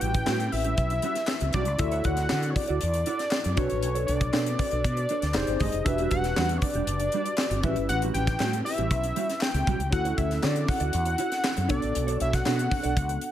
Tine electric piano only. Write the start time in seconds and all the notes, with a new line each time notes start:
Already playing: C#4 E4 G4 B4
1.78 E4 F4 A4 D5
1.85 F#4
3.56 D4 F#4 A4 B4
5.35 D#4 G4 G#4 C5
5.85 D4 F#4 G4 B4
7.63 C#4 E4 G4 B4
9.90 C#4 E4 F#4 A4
11.68 B3 D4 F#4 A4